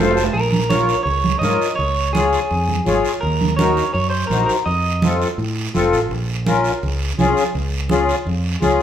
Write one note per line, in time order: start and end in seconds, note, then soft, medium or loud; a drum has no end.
0.00 0.27 F1 medium
0.00 0.24 F4 medium
0.00 0.24 A4 medium
0.00 0.24 C5 medium
0.00 0.15 F5 medium
0.11 low timbale medium
0.16 0.33 A5 medium
0.16 short guiro medium
0.23 low timbale medium
0.33 0.92 A#1 medium
0.33 0.67 A#4 medium
0.33 high conga soft
0.33 long guiro medium
0.53 high conga medium
0.69 0.96 F4 medium
0.69 0.96 A#4 medium
0.69 1.02 C#5 loud
0.69 0.96 C#5 medium
0.69 high conga medium
0.69 short guiro medium
0.89 short guiro medium
1.03 1.35 C#2 medium
1.03 1.38 C#5 loud
1.03 high conga soft
1.03 long guiro medium
1.24 high conga medium
1.39 1.56 G#2 medium
1.39 1.68 F4 medium
1.39 1.74 D#5 medium
1.39 high conga medium
1.43 1.68 A#4 medium
1.43 1.68 C#5 medium
1.43 short guiro medium
1.62 short guiro medium
1.76 2.36 C#2 medium
1.76 2.10 C#5 loud
1.76 high conga soft
1.80 long guiro medium
2.13 2.39 F4 medium
2.13 3.00 G#4 medium
2.13 2.40 G#4 medium
2.13 2.40 C#5 medium
2.13 high conga medium
2.13 short guiro medium
2.33 short guiro medium
2.50 2.80 F2 medium
2.50 high conga soft
2.50 long guiro medium
2.69 high conga medium
2.86 3.01 G#1 medium
2.86 3.11 F4 medium
2.86 3.12 G#4 medium
2.86 3.12 C#5 medium
2.86 high conga medium
2.86 short guiro medium
3.05 short guiro medium
3.21 3.80 D#2 medium
3.21 3.56 A#4 medium
3.21 high conga soft
3.21 long guiro medium
3.41 high conga medium
3.57 3.84 D#4 medium
3.57 3.84 F#4 medium
3.57 3.84 A#4 medium
3.57 3.91 C#5 medium
3.57 high conga medium
3.57 short guiro medium
3.77 short guiro medium
3.94 4.23 F#2 medium
3.94 4.09 C#5 medium
3.94 high conga soft
3.94 long guiro medium
4.10 4.27 C5 medium
4.27 4.45 A#1 loud
4.27 4.56 D#4 medium
4.27 4.45 A#4 medium
4.27 high conga medium
4.31 4.56 F#4 medium
4.31 4.56 C5 medium
4.31 short guiro medium
4.46 4.51 A#4 medium
4.46 short guiro medium
4.66 5.24 F2 medium
4.66 5.16 D#5 medium
4.66 high conga soft
4.66 long guiro medium
5.02 5.28 C4 medium
5.02 5.28 F4 medium
5.02 5.28 A4 medium
5.02 high conga medium
5.02 short guiro medium
5.22 short guiro medium
5.38 5.67 A2 medium
5.38 high conga soft
5.38 long guiro medium
5.74 5.91 F1 medium
5.74 5.99 C4 medium
5.74 6.00 F4 medium
5.74 6.00 A4 medium
5.74 high conga medium
5.74 short guiro medium
5.93 6.09 A1 medium
5.93 short guiro medium
6.11 6.68 A#1 medium
6.11 high conga soft
6.11 long guiro medium
6.46 6.71 C#4 medium
6.46 6.72 F4 medium
6.46 6.72 A#4 medium
6.46 high conga medium
6.46 short guiro medium
6.64 short guiro medium
6.83 7.12 C#2 medium
6.83 high conga soft
6.83 long guiro medium
7.18 7.33 C2 medium
7.18 7.44 C#4 medium
7.18 7.44 F4 medium
7.18 7.44 G#4 medium
7.18 high conga medium
7.18 short guiro medium
7.37 short guiro medium
7.55 8.12 C#2 medium
7.55 high conga soft
7.55 long guiro medium
7.89 8.15 C#4 medium
7.89 8.16 F4 medium
7.89 8.16 G#4 medium
7.89 high conga medium
7.89 short guiro medium
8.09 short guiro medium
8.25 8.55 F2 medium
8.25 high conga soft
8.25 long guiro medium
8.61 8.76 C#2 medium
8.61 8.82 C#4 medium
8.61 8.82 F4 medium
8.61 8.82 G#4 medium
8.61 high conga medium
8.61 short guiro medium